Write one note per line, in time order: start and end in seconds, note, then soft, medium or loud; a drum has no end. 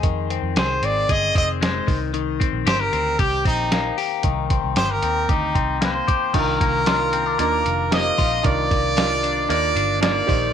0.00 0.37 F2 loud
0.00 1.87 D#3 medium
0.00 1.60 G#3 medium
0.00 0.30 C4 medium
0.00 0.56 G#4 medium
0.00 kick medium
0.00 closed hi-hat medium
0.30 0.83 C4 medium
0.30 closed hi-hat medium
0.42 0.54 F2 medium
0.56 0.79 C2 medium
0.56 1.08 G#4 medium
0.56 0.86 C5 medium
0.56 snare loud
0.56 closed hi-hat medium
0.82 1.05 G#1 medium
0.82 1.35 C4 medium
0.82 1.13 D5 medium
0.82 closed hi-hat medium
1.09 1.31 G1 medium
1.09 1.93 G#4 medium
1.09 1.36 D#5 loud
1.09 kick medium
1.09 closed hi-hat medium
1.35 1.80 F1 medium
1.35 2.39 C4 medium
1.35 1.49 D#5 medium
1.35 kick medium
1.35 closed hi-hat medium
1.61 1.93 G#3 medium
1.61 1.99 C5 medium
1.61 snare loud
1.61 closed hi-hat medium
1.87 2.44 C2 medium
1.87 2.13 D#3 medium
1.87 kick loud
1.87 open hi-hat medium
2.14 4.24 D#3 medium
2.14 closed hi-hat medium
2.40 2.92 C4 medium
2.40 kick medium
2.40 closed hi-hat medium
2.53 2.64 A#1 medium
2.66 2.88 G1 medium
2.66 3.19 G4 medium
2.66 2.82 C5 medium
2.66 snare loud
2.66 closed hi-hat medium
2.80 3.21 A#4 medium
2.93 3.15 D2 medium
2.93 3.45 C4 medium
2.93 closed hi-hat medium
3.19 3.42 C2 medium
3.19 3.97 G4 medium
3.19 3.46 G4 medium
3.19 kick medium
3.19 closed hi-hat medium
3.45 3.90 A#1 medium
3.45 4.50 C4 medium
3.45 3.95 D#4 medium
3.45 kick medium
3.45 closed hi-hat medium
3.72 5.81 A#3 medium
3.72 snare loud
3.72 closed hi-hat medium
3.98 4.76 G4 medium
3.98 open hi-hat medium
4.23 4.57 C2 loud
4.23 6.33 D#3 medium
4.23 kick loud
4.23 closed hi-hat medium
4.50 5.03 C4 medium
4.50 kick medium
4.50 closed hi-hat medium
4.64 4.75 C2 medium
4.76 4.99 G1 medium
4.76 5.28 G4 medium
4.76 4.92 C5 medium
4.76 snare loud
4.76 closed hi-hat medium
4.91 5.30 A#4 medium
5.03 5.25 D#2 medium
5.03 5.55 C4 medium
5.03 closed hi-hat medium
5.29 5.51 D2 medium
5.29 5.79 D#4 medium
5.29 6.07 G4 medium
5.29 kick medium
5.29 closed hi-hat medium
5.55 6.00 C2 medium
5.55 6.63 C4 medium
5.55 kick medium
5.55 closed hi-hat medium
5.81 6.60 A#3 medium
5.81 6.32 C5 medium
5.81 snare loud
5.81 closed hi-hat medium
6.08 6.86 G4 medium
6.08 kick medium
6.08 closed hi-hat medium
6.34 6.56 C2 medium
6.34 8.44 D#3 medium
6.34 6.78 D4 medium
6.34 6.78 D#4 medium
6.34 6.78 F4 medium
6.34 6.78 A#4 medium
6.34 7.37 A#4 medium
6.34 kick loud
6.34 closed hi-hat medium
6.34 crash medium
6.60 7.35 C2 medium
6.60 7.38 A#3 medium
6.60 kick medium
6.60 closed hi-hat medium
6.86 7.30 D4 medium
6.86 7.30 D#4 medium
6.86 7.30 F4 medium
6.86 8.17 F4 medium
6.86 7.30 A#4 medium
6.86 snare loud
6.86 closed hi-hat medium
7.13 7.26 C4 medium
7.13 closed hi-hat medium
7.26 7.66 D4 medium
7.38 7.62 D#2 medium
7.38 7.91 A#3 medium
7.38 7.83 D4 medium
7.38 7.83 D#4 medium
7.38 7.83 F4 medium
7.38 7.83 A#4 medium
7.38 7.89 A#4 medium
7.38 closed hi-hat medium
7.65 8.10 F1 medium
7.65 closed hi-hat medium
7.91 8.71 A#3 medium
7.91 8.35 C4 medium
7.91 8.35 D#4 medium
7.91 8.35 F4 medium
7.91 8.35 G4 medium
7.91 8.42 D#5 medium
7.91 snare loud
7.91 closed hi-hat medium
8.18 8.41 A#1 medium
8.18 8.96 F4 medium
8.18 kick medium
8.18 open hi-hat medium
8.43 8.67 C2 medium
8.43 10.28 D#3 medium
8.43 8.87 D4 medium
8.43 8.87 D#4 medium
8.43 8.88 F4 medium
8.43 8.88 A#4 medium
8.43 9.46 D5 loud
8.43 kick medium
8.43 closed hi-hat medium
8.71 9.46 C2 medium
8.71 9.49 A#3 medium
8.71 kick medium
8.71 closed hi-hat medium
8.96 9.40 D4 medium
8.96 9.40 D#4 medium
8.96 10.34 F4 medium
8.96 9.40 F4 medium
8.96 9.40 A#4 medium
8.96 snare loud
8.96 closed hi-hat medium
9.23 9.75 D4 medium
9.23 closed hi-hat medium
9.49 9.72 D#2 medium
9.49 10.02 A#3 medium
9.49 9.93 D4 medium
9.49 9.93 D#4 medium
9.49 9.93 F4 medium
9.49 9.93 A#4 medium
9.49 9.99 D5 medium
9.49 closed hi-hat medium
9.75 10.20 G1 medium
9.75 10.34 D4 medium
9.75 closed hi-hat medium
10.01 10.53 A#3 medium
10.01 10.28 D4 medium
10.01 10.26 D#4 medium
10.01 10.28 F4 medium
10.01 10.28 A#4 medium
10.01 10.53 D5 medium
10.01 snare loud
10.01 closed hi-hat medium
10.27 10.53 A#1 medium
10.27 10.53 D#3 medium
10.27 10.53 D#4 medium
10.27 10.53 G4 medium
10.27 10.53 C5 medium
10.27 kick loud
10.27 open hi-hat medium